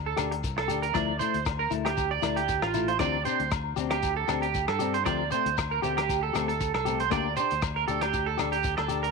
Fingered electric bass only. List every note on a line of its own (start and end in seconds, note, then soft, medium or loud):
0.00 0.15 D2 medium
0.18 0.42 D2 medium
0.44 0.67 C2 medium
0.69 0.92 D2 medium
0.95 1.19 D2 medium
1.34 1.69 D2 medium
1.71 2.19 D2 medium
2.23 2.60 D2 medium
2.63 2.98 A1 medium
3.00 3.24 D2 medium
3.40 3.75 D2 medium
3.77 4.25 D2 medium
4.28 4.65 D2 medium
4.68 5.03 G2 medium
5.06 5.30 D2 medium
5.46 5.80 D2 medium
5.83 6.31 D2 loud
6.34 6.71 D2 medium
6.74 7.09 C2 medium
7.12 7.35 D2 medium
7.52 7.86 D2 medium
7.89 8.36 D2 medium
8.40 8.76 D2 medium
8.79 9.11 D2 medium